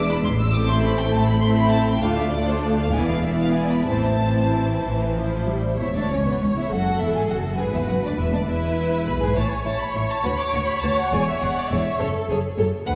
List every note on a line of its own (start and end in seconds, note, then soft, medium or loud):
0.00 0.17 E1 medium
0.00 0.16 E2 medium
0.00 0.26 G#3 medium
0.00 0.26 D4 medium
0.00 0.26 E4 medium
0.00 0.26 B4 medium
0.00 0.11 D6 medium
0.11 0.17 B5 medium
0.25 1.04 A1 medium
0.25 1.03 A2 medium
0.25 0.31 C6 medium
0.40 0.55 E6 medium
0.54 1.41 A3 medium
0.54 1.42 C4 medium
0.54 1.42 E4 medium
0.54 1.42 A4 medium
0.54 0.69 D6 medium
0.69 0.84 C6 medium
0.83 0.98 B5 medium
0.98 1.14 G5 medium
1.13 1.92 A1 medium
1.13 1.92 A2 medium
1.13 1.28 A5 medium
1.28 1.43 B5 medium
1.41 2.01 A3 medium
1.41 2.02 C4 medium
1.41 2.02 E4 medium
1.41 2.02 A4 medium
1.41 1.48 C6 loud
1.57 1.72 B5 loud
1.71 1.87 A5 medium
1.87 2.02 G5 medium
2.02 2.82 D2 medium
2.02 2.83 D2 medium
2.02 2.32 A3 medium
2.02 2.31 D4 medium
2.02 2.32 F4 medium
2.02 2.32 A4 medium
2.02 2.18 F5 medium
2.18 2.33 E5 medium
2.32 2.93 A3 medium
2.32 2.92 D4 medium
2.32 2.93 F4 medium
2.32 2.93 A4 medium
2.32 2.47 D5 medium
2.49 2.64 C5 medium
2.63 2.78 D5 medium
2.79 2.94 F5 medium
2.93 3.77 E1 medium
2.93 3.77 E2 medium
2.93 3.24 E3 medium
2.93 3.24 B3 medium
2.93 3.23 E4 soft
2.93 3.23 D5 medium
2.93 3.09 G#5 medium
3.09 3.25 F5 medium
3.23 3.88 E3 soft
3.23 3.88 B3 medium
3.23 3.87 E4 soft
3.23 3.87 D5 soft
3.23 3.30 E5 medium
3.39 3.56 F5 medium
3.55 3.71 G#5 medium
3.72 3.88 B5 medium
3.86 4.73 A1 medium
3.86 4.73 A2 medium
3.86 4.20 E3 soft
3.86 4.20 C4 soft
3.86 4.20 E4 medium
3.86 4.20 C5 medium
3.86 5.44 A5 medium
4.21 4.77 E3 soft
4.21 4.77 C4 soft
4.21 5.15 E4 soft
4.21 5.15 C5 medium
4.84 5.69 A1 medium
4.84 5.69 A2 medium
4.84 5.14 E3 medium
5.16 5.48 F3 medium
5.16 5.80 E4 soft
5.16 5.80 C5 soft
5.48 5.80 G3 medium
5.79 5.95 E1 medium
5.79 5.95 E2 medium
5.79 5.87 E4 medium
5.79 6.67 C#5 medium
5.79 5.94 E5 medium
5.95 6.11 D2 soft
5.95 6.11 D4 soft
5.95 6.11 D5 medium
6.09 6.26 C#2 soft
6.09 6.26 C#4 soft
6.09 6.25 C#5 medium
6.26 6.41 B2 medium
6.26 6.41 B3 soft
6.26 6.41 B4 soft
6.41 6.47 C#2 medium
6.41 6.48 C#2 medium
6.41 6.47 C#4 soft
6.41 6.56 C#5 medium
6.56 6.62 E2 soft
6.56 6.71 E4 medium
6.56 6.63 E5 medium
6.70 6.99 F#1 medium
6.70 7.00 F#2 soft
6.70 7.00 F#4 medium
6.70 7.59 A4 medium
6.70 7.00 F#5 medium
7.00 7.15 E1 soft
7.00 7.15 E2 soft
7.00 7.15 E4 soft
7.00 7.15 E5 medium
7.15 7.21 G#2 medium
7.15 7.30 G#4 medium
7.15 7.21 G#5 medium
7.29 7.59 F#1 medium
7.29 7.58 F#2 medium
7.29 7.60 F#4 medium
7.29 7.37 F#5 medium
7.59 7.74 G#1 medium
7.59 7.74 G#2 medium
7.59 7.74 G#4 medium
7.59 8.46 B4 medium
7.59 7.65 G#5 medium
7.74 7.80 E2 medium
7.74 7.89 E4 medium
7.74 7.80 E5 medium
7.86 7.95 F#1 medium
7.86 7.95 F#2 medium
7.86 8.02 F#4 medium
7.86 7.96 F#5 medium
8.02 8.19 D2 medium
8.02 8.18 D4 medium
8.02 8.11 D5 medium
8.17 8.33 E1 medium
8.17 8.33 E2 medium
8.17 8.23 E4 medium
8.17 8.33 E5 medium
8.32 8.48 D2 medium
8.32 8.38 D4 soft
8.32 8.48 D5 medium
8.46 9.07 E1 medium
8.46 9.07 E2 medium
8.46 9.05 E4 medium
8.46 9.35 B4 medium
8.46 9.06 E5 medium
9.06 9.22 B1 medium
9.06 9.22 B2 medium
9.06 9.21 B4 medium
9.06 9.22 B5 medium
9.21 9.36 G#2 medium
9.21 9.36 G#4 medium
9.21 9.37 G#5 medium
9.36 9.45 A1 medium
9.36 9.45 A2 medium
9.36 9.44 E4 medium
9.36 9.44 C#5 medium
9.36 12.00 C#5 medium
9.36 9.51 A5 medium
9.52 9.58 G#5 medium
9.65 9.74 A1 medium
9.65 9.74 A2 soft
9.65 9.73 E4 medium
9.65 9.74 C#5 soft
9.65 9.81 A5 medium
9.81 9.96 B5 medium
9.95 10.04 A1 medium
9.95 10.03 A2 medium
9.95 10.03 E4 soft
9.95 10.04 C#5 soft
9.95 10.10 C#6 medium
10.10 10.25 A5 medium
10.23 10.32 D2 medium
10.23 10.33 D2 soft
10.23 10.32 F#4 medium
10.23 10.31 B4 medium
10.23 10.39 B5 medium
10.39 10.54 D6 medium
10.53 10.62 D2 soft
10.53 10.62 F#4 soft
10.53 10.62 B4 soft
10.53 10.68 C#6 medium
10.67 10.82 B5 medium
10.82 10.91 D2 medium
10.82 10.91 F#4 medium
10.82 10.91 B4 medium
10.82 10.97 A5 medium
10.97 11.12 F#5 medium
11.11 11.21 E1 medium
11.11 11.21 E2 medium
11.11 11.20 G#4 medium
11.11 11.20 D5 medium
11.11 11.27 G#5 medium
11.27 11.42 E5 medium
11.41 11.50 E1 medium
11.41 11.51 E2 medium
11.41 11.49 G#4 medium
11.41 11.49 D5 medium
11.41 11.56 F#5 medium
11.57 11.71 D5 medium
11.70 11.80 E1 medium
11.70 11.80 E2 medium
11.70 11.79 G#4 soft
11.70 11.79 D5 medium
11.70 12.00 E5 medium
11.99 12.09 F#1 medium
11.99 12.08 F#2 medium
11.99 12.29 A4 medium
11.99 12.08 A4 medium
11.99 12.08 C#5 medium
12.29 12.38 F#1 medium
12.29 12.37 F#2 medium
12.29 12.37 G#4 medium
12.29 12.39 A4 medium
12.29 12.39 C#5 medium
12.58 12.66 F#1 medium
12.58 12.67 F#2 medium
12.58 12.66 A4 medium
12.58 12.67 A4 medium
12.58 12.67 C#5 medium
12.87 12.95 D2 medium
12.87 12.95 B4 medium
12.87 12.93 F#5 loud